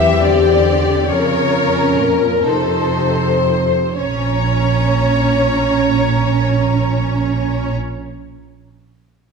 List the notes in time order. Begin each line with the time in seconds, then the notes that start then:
Already playing: E2 E3 C4 G4 E5
0.23 D3 D5
1.10 F2 C#3 C#4 A#4 C#5
2.00 A#2 A#4
2.46 F2 C3 D#4 A4 C5
3.99 A#1 C#4 C#5 A#5